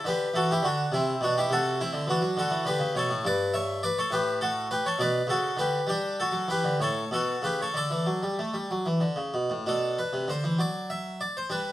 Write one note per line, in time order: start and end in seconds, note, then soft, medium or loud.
0.04 0.26 D3 medium
0.04 0.34 G4 medium
0.04 0.36 B4 loud
0.34 0.55 E3 medium
0.34 0.50 F#4 medium
0.34 0.50 A4 loud
0.51 0.65 E4 medium
0.51 0.65 G4 medium
0.62 0.84 D3 medium
0.62 0.92 D4 medium
0.62 0.89 F#4 medium
0.92 1.13 C3 medium
0.92 1.21 C4 medium
0.92 1.22 E4 medium
1.21 1.42 B2 medium
1.21 1.37 D4 medium
1.21 1.37 F#4 medium
1.38 1.51 E4 medium
1.38 1.51 G4 loud
1.50 1.81 C3 medium
1.50 1.78 F#4 medium
1.50 1.80 A4 loud
1.81 2.08 C4 medium
1.81 2.04 E4 medium
1.93 2.07 D3 medium
2.07 2.21 E3 medium
2.07 2.36 D4 medium
2.07 2.38 F#4 medium
2.21 2.35 F#3 medium
2.37 2.51 D3 medium
2.37 2.66 F#4 medium
2.37 2.63 A4 medium
2.51 2.65 E3 medium
2.65 2.80 D3 medium
2.65 2.95 G4 medium
2.65 2.91 B4 loud
2.79 2.94 C#3 medium
2.95 3.09 B2 medium
2.95 3.24 A4 medium
2.95 3.25 C#5 loud
3.10 3.24 A2 medium
3.25 3.87 G2 medium
3.25 3.53 B4 loud
3.25 3.54 D5 loud
3.54 3.81 C#5 medium
3.54 3.82 E5 loud
3.83 3.97 B4 medium
3.83 3.97 D5 loud
3.98 4.12 A4 medium
3.98 4.12 C#5 medium
4.11 4.74 A2 medium
4.11 4.40 G4 medium
4.11 4.37 B4 medium
4.41 4.69 F#4 medium
4.41 4.66 A4 loud
4.71 4.85 G4 medium
4.71 4.85 B4 loud
4.86 5.00 A4 medium
4.86 5.00 C#5 loud
4.99 5.20 B2 medium
4.99 5.28 B4 medium
4.99 5.25 D5 loud
5.27 5.49 C#3 medium
5.27 5.57 F#4 medium
5.27 5.54 A4 medium
5.57 5.79 D3 medium
5.57 5.87 G4 medium
5.57 5.88 B4 medium
5.87 6.20 G3 medium
5.87 6.17 D4 medium
5.87 6.18 G4 loud
6.20 6.48 F#4 medium
6.20 6.49 A4 loud
6.32 6.47 F#3 medium
6.48 6.63 E3 medium
6.48 6.79 G4 medium
6.48 6.76 B4 medium
6.64 6.79 D3 medium
6.80 7.02 A2 medium
6.80 7.10 A4 medium
6.80 7.07 C#5 loud
7.11 7.34 B2 medium
7.11 7.42 F#4 medium
7.11 7.44 A4 medium
7.42 7.65 C#3 medium
7.42 7.59 G4 medium
7.42 7.59 B4 medium
7.62 7.76 A4 medium
7.62 7.76 C#5 medium
7.74 7.89 D3 medium
7.74 9.32 A4 medium
7.74 9.12 D5 medium
7.90 8.06 E3 medium
8.06 8.22 F#3 medium
8.23 8.38 G3 medium
8.39 8.54 A3 medium
8.54 8.69 G3 medium
8.71 8.86 F#3 medium
8.86 9.01 E3 medium
9.00 9.17 D3 medium
9.16 9.33 C#3 medium
9.34 9.50 B2 medium
9.50 9.65 A2 medium
9.66 10.00 B2 soft
9.66 10.55 D4 soft
9.66 9.98 A4 medium
9.99 10.29 B4 medium
10.13 10.28 C3 soft
10.28 10.43 D3 soft
10.28 10.60 C5 medium
10.44 10.58 E3 medium
10.59 11.24 F#3 medium
10.59 10.90 D5 medium
10.90 11.20 E5 medium
11.21 11.35 D5 medium
11.37 11.51 C5 medium
11.50 11.72 G3 medium
11.50 11.72 D4 soft
11.50 11.72 B4 medium